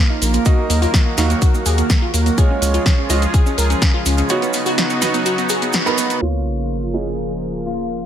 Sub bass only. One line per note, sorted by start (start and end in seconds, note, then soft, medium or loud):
0.22 0.38 A#1 medium
0.70 0.86 D#2 loud
1.18 1.34 D#2 medium
1.66 1.82 D#2 medium
2.14 2.30 D#2 medium
2.62 2.78 C#2 loud
3.10 3.26 C#2 loud
3.58 3.74 C#2 medium
4.06 4.22 C#2 medium